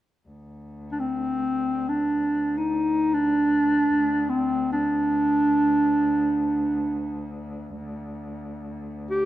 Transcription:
0.29 9.25 D2 medium
0.92 1.01 D4 soft
1.00 1.90 C4 medium
1.89 2.59 D4 medium
2.57 3.15 D#4 medium
3.14 4.31 D4 medium
4.29 4.72 C4 medium
4.73 7.34 D4 medium
9.10 9.25 G4 medium

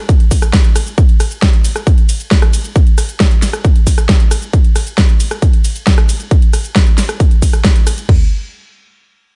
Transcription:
0.09 kick loud
0.09 closed hi-hat medium
0.09 shaker soft
0.20 closed hi-hat soft
0.31 kick medium
0.31 open hi-hat loud
0.31 ride medium
0.31 shaker medium
0.42 cross-stick medium
0.42 closed hi-hat soft
0.42 shaker soft
0.53 kick loud
0.53 snare loud
0.53 closed hi-hat medium
0.53 shaker soft
0.65 closed hi-hat soft
0.76 cross-stick medium
0.76 open hi-hat loud
0.76 ride medium
0.76 shaker medium
0.87 closed hi-hat soft
0.87 shaker soft
0.98 kick loud
0.98 closed hi-hat medium
0.98 shaker soft
1.09 closed hi-hat soft
1.20 cross-stick medium
1.20 open hi-hat loud
1.20 ride medium
1.20 shaker medium
1.31 closed hi-hat soft
1.31 shaker soft
1.42 kick loud
1.42 snare loud
1.42 closed hi-hat medium
1.42 shaker soft
1.53 closed hi-hat soft
1.65 open hi-hat medium
1.65 ride medium
1.65 shaker medium
1.76 cross-stick medium
1.76 closed hi-hat soft
1.76 shaker soft
1.87 kick loud
1.87 closed hi-hat medium
1.87 shaker soft
1.98 closed hi-hat soft
2.09 open hi-hat loud
2.09 ride medium
2.09 shaker medium
2.20 closed hi-hat soft
2.20 shaker soft
2.31 kick loud
2.31 snare loud
2.31 closed hi-hat medium
2.31 shaker soft
2.42 cross-stick medium
2.42 closed hi-hat soft
2.53 open hi-hat medium
2.53 ride medium
2.53 shaker medium
2.65 closed hi-hat soft
2.65 shaker soft
2.76 kick loud
2.76 closed hi-hat medium
2.76 shaker soft
2.87 closed hi-hat soft
2.98 cross-stick medium
2.98 open hi-hat loud
2.98 ride medium
2.98 shaker medium
3.09 closed hi-hat soft
3.09 shaker soft
3.20 kick loud
3.20 snare loud
3.20 closed hi-hat medium
3.20 shaker soft
3.31 closed hi-hat soft
3.42 snare medium
3.42 open hi-hat medium
3.42 ride medium
3.42 shaker medium
3.53 cross-stick medium
3.53 closed hi-hat soft
3.53 shaker soft
3.65 kick loud
3.65 closed hi-hat medium
3.65 shaker soft
3.76 closed hi-hat soft
3.87 kick medium
3.87 open hi-hat loud
3.87 ride medium
3.87 shaker medium
3.98 cross-stick medium
3.98 closed hi-hat soft
3.98 shaker soft
4.09 kick loud
4.09 snare loud
4.09 closed hi-hat medium
4.09 shaker soft
4.20 closed hi-hat soft
4.31 cross-stick medium
4.31 open hi-hat medium
4.31 ride medium
4.31 shaker medium
4.42 closed hi-hat soft
4.42 shaker soft
4.53 kick loud
4.53 closed hi-hat medium
4.53 shaker soft
4.65 closed hi-hat soft
4.76 cross-stick medium
4.76 open hi-hat loud
4.76 ride medium
4.76 shaker medium
4.87 closed hi-hat soft
4.87 shaker soft
4.98 kick loud
4.98 snare loud
4.98 closed hi-hat medium
4.98 shaker soft
5.09 closed hi-hat soft
5.20 open hi-hat medium
5.20 ride medium
5.20 shaker medium
5.31 cross-stick medium
5.31 closed hi-hat soft
5.31 shaker soft
5.42 kick loud
5.42 closed hi-hat medium
5.42 shaker soft
5.53 closed hi-hat soft
5.64 open hi-hat loud
5.64 ride medium
5.64 shaker medium
5.76 closed hi-hat soft
5.76 shaker soft
5.87 kick loud
5.87 snare loud
5.87 closed hi-hat medium
5.87 shaker soft
5.98 cross-stick medium
5.98 closed hi-hat soft
6.09 open hi-hat medium
6.09 ride medium
6.09 shaker medium
6.20 closed hi-hat soft
6.20 shaker soft
6.31 kick loud
6.31 closed hi-hat medium
6.31 shaker soft
6.42 closed hi-hat soft
6.53 cross-stick medium
6.53 open hi-hat loud
6.53 ride medium
6.53 shaker medium
6.65 closed hi-hat soft
6.65 shaker soft
6.76 kick loud
6.76 snare loud
6.76 closed hi-hat medium
6.76 shaker soft
6.87 closed hi-hat soft
6.98 snare medium
6.98 open hi-hat medium
6.98 ride medium
6.98 shaker medium
7.09 cross-stick medium
7.09 closed hi-hat soft
7.09 shaker soft
7.20 kick loud
7.20 closed hi-hat medium
7.20 shaker soft
7.31 closed hi-hat soft
7.42 kick medium
7.42 open hi-hat loud
7.42 ride medium
7.42 shaker medium
7.53 cross-stick medium
7.53 closed hi-hat soft
7.53 shaker soft
7.65 kick loud
7.65 snare loud
7.65 closed hi-hat medium
7.65 shaker soft
7.76 closed hi-hat soft
7.87 cross-stick medium
7.87 open hi-hat medium
7.87 ride medium
7.87 shaker medium
7.98 closed hi-hat soft
7.98 shaker soft
8.09 kick loud
8.09 floor tom loud
8.09 crash loud

